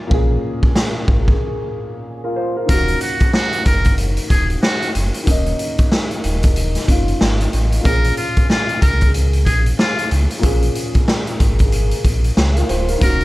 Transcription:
0.07 grand piano A#2 A#3
0.11 sub bass A#1, grand piano C#4 G#4, kick
0.63 kick
0.76 snare
1.08 sub bass G#1, kick
1.28 kick
2.24 grand piano F4 A#4
2.36 grand piano F4 C5
2.56 grand piano F4 A#4
2.65 sub bass D#1, grand piano D#3 A#3, muted trumpet A#4, kick, closed hi-hat
2.70 grand piano C#4 F#4
2.88 closed hi-hat
3.01 muted trumpet F#4, closed hi-hat
3.20 kick, closed hi-hat
3.33 muted trumpet F#4, snare
3.52 closed hi-hat
3.65 sub bass F#1, muted trumpet A#4, kick, closed hi-hat
3.84 kick, closed hi-hat
3.98 closed hi-hat
4.17 closed hi-hat
4.30 sub bass D#1, muted trumpet G#4, kick, closed hi-hat
4.50 closed hi-hat
4.63 muted trumpet F#4, snare
4.82 closed hi-hat
4.95 sub bass F#1, closed hi-hat
5.14 closed hi-hat
5.24 sub bass D#1, grand piano D#3 A#3, kick, closed hi-hat
5.29 grand piano C#4 D#4
5.46 closed hi-hat
5.59 closed hi-hat
5.78 kick, closed hi-hat
5.92 snare
6.11 closed hi-hat
6.24 sub bass D#1, closed hi-hat
6.43 kick, closed hi-hat
6.56 closed hi-hat
6.75 snare, closed hi-hat
6.87 sub bass F#1, grand piano D#3 A#3 C#4 F4, kick, closed hi-hat
7.08 closed hi-hat
7.21 sub bass G#1, snare
7.40 closed hi-hat
7.53 sub bass A1, closed hi-hat
7.72 closed hi-hat
7.81 grand piano A#2 A#3, closed hi-hat
7.85 sub bass A#1, grand piano C#4 G#4, muted trumpet A#4, kick
8.04 closed hi-hat
8.17 muted trumpet F4, closed hi-hat
8.36 kick, closed hi-hat
8.49 muted trumpet F4, snare
8.69 closed hi-hat
8.81 sub bass C#2, muted trumpet A#4, kick, closed hi-hat
9.01 kick, closed hi-hat
9.14 closed hi-hat
9.33 closed hi-hat
9.46 sub bass A#1, muted trumpet G#4, kick, closed hi-hat
9.66 closed hi-hat
9.79 muted trumpet F4, snare
9.98 closed hi-hat
10.11 sub bass C#2, closed hi-hat
10.30 closed hi-hat
10.39 grand piano A#2 A#3, closed hi-hat
10.43 sub bass A#1, grand piano C#4 G#4, kick
10.62 closed hi-hat
10.75 closed hi-hat
10.94 kick, closed hi-hat
11.08 snare
11.27 closed hi-hat
11.40 sub bass G#1, kick, closed hi-hat
11.59 kick, closed hi-hat
11.72 closed hi-hat
11.91 closed hi-hat
12.05 sub bass A#1, kick, closed hi-hat
12.24 closed hi-hat
12.37 sub bass C#2, snare
12.56 grand piano F4 A#4, closed hi-hat
12.69 sub bass D1, grand piano F4 C5, closed hi-hat
12.88 grand piano F4 A#4, closed hi-hat
12.97 grand piano D#3 A#3, closed hi-hat
13.01 sub bass D#1, grand piano C#4 F#4, muted trumpet A#4, kick
13.21 closed hi-hat

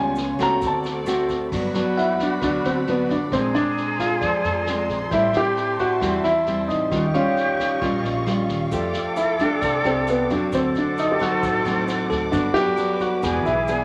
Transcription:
Already playing: upright bass C#2, nylon-string guitar C#3 G3 B3 F4, string section G3 B3 F4 C#5, grand piano G#5
0.15 snare, shaker
0.39 upright bass C#2, nylon-string guitar A3 C4 F#4, kick, cross-stick, snare, shaker
0.43 grand piano A#5
0.60 upright bass D2, nylon-string guitar D3, string section C4 F#4 A4 D5, kick, snare, shaker
0.67 grand piano A5
0.84 snare, shaker
1.06 nylon-string guitar A3 C4 F#4, cross-stick, snare, shaker
1.29 kick, snare, shaker
1.52 upright bass G1, nylon-string guitar G2 F#3 B3 D4, flute F#4, string section F#4 D5 F#5 B5, kick, snare, crash
1.74 nylon-string guitar F#3 B3 D4, cross-stick, snare
1.97 grand piano E4, tine electric piano F#5, snare
2.19 grand piano D4, kick, snare
2.41 upright bass D2, nylon-string guitar D3 F#3 B3 D4, grand piano D4, kick, cross-stick, snare
2.64 upright bass D2, grand piano C4, snare
2.87 nylon-string guitar F#3 B3 D4, grand piano B3, snare
3.09 upright bass G1, grand piano D4, kick, snare
3.31 upright bass A#1, nylon-string guitar A#2 G#3 C4 D4, grand piano C4, string section G#4 A#5 C6, flute G#4, kick, cross-stick, snare
3.54 nylon-string guitar G#3 C4 D4, grand piano D4, snare
3.77 snare
3.99 grand piano F4, kick, cross-stick, snare
4.21 upright bass F2, nylon-string guitar F3 G#3 C4 D4, tine electric piano D5, kick, snare
4.44 upright bass F2, snare
4.66 nylon-string guitar G#3 C4 D4, cross-stick, snare
4.89 upright bass A#1, kick, snare
5.11 upright bass A1, nylon-string guitar A2 G3 C4 E4, string section G3 E5 A5, grand piano E4, flute G4, kick, snare
5.33 nylon-string guitar G3 C4 E4, grand piano G4, cross-stick, snare
5.56 snare
5.79 grand piano F#4, kick, snare
6.01 upright bass E2, nylon-string guitar E3 G3 C4 E4, kick, cross-stick, snare
6.24 upright bass E2, grand piano E4, snare
6.47 nylon-string guitar G3 C4 E4, snare
6.68 upright bass A1, grand piano D#4, kick, snare
6.91 upright bass D#2, nylon-string guitar D#3 G3 C#4 F4, flute G4, string section D#5 F5 C#6, kick, cross-stick, snare
7.07 grand piano D#4
7.14 nylon-string guitar G3 C#4 F4, grand piano C#4, tine electric piano F5, snare
7.37 snare
7.59 kick, cross-stick, snare
7.81 upright bass A#1, nylon-string guitar A#2 G3 C#4 F4, kick, snare
8.04 upright bass A#1, snare
8.26 nylon-string guitar G3 C#4 F4, cross-stick, snare
8.49 upright bass D#2, kick, snare
8.71 upright bass F2, nylon-string guitar F3 A3 D4 G4, string section A4 G5 D6, flute A4, kick, snare, shaker
8.93 cross-stick, snare, shaker
9.16 grand piano E4, snare, shaker
9.39 nylon-string guitar A3 D4 G4, grand piano D4, kick, snare, shaker
9.61 upright bass C2, nylon-string guitar C3, tine electric piano D5, kick, cross-stick, snare, shaker
9.84 upright bass C2, nylon-string guitar A3 D4 G4, grand piano C4, snare, shaker
10.07 grand piano B3, snare, shaker
10.30 upright bass F2, nylon-string guitar F#3 C4, grand piano D4, kick, snare, shaker
10.52 upright bass D2, nylon-string guitar D3, grand piano C4, flute A4, string section C5 D#5 F#5 D6, kick, cross-stick, snare, shaker
10.75 grand piano D4, snare, shaker
10.97 grand piano D#4, snare, shaker
11.12 grand piano G4
11.20 nylon-string guitar F#3 C4 D#4, grand piano F#4, tine electric piano C5, kick, cross-stick, snare, shaker
11.43 upright bass A1, nylon-string guitar A2, kick, snare, shaker
11.65 upright bass A1, nylon-string guitar F#3 C4 D#4, snare, shaker
11.88 cross-stick, snare, shaker
12.10 upright bass D2, tine electric piano A4, kick, snare, shaker
12.31 upright bass G1, nylon-string guitar G2 F#3 B3 D4, grand piano D4, flute F#4, string section B4 B5, kick, snare, shaker
12.54 nylon-string guitar F#3 B3 D4, grand piano G4, cross-stick, snare, shaker
12.77 nylon-string guitar F#3 B3 D4, snare, shaker
13.00 grand piano F#4, kick, snare, shaker
13.22 upright bass E1, nylon-string guitar E3 B3 D4 G#4, flute G#4, string section E5 G#5, kick, cross-stick, snare, shaker
13.45 upright bass B1, grand piano E4, snare, shaker
13.68 nylon-string guitar B3 D4 G#4, snare, shaker

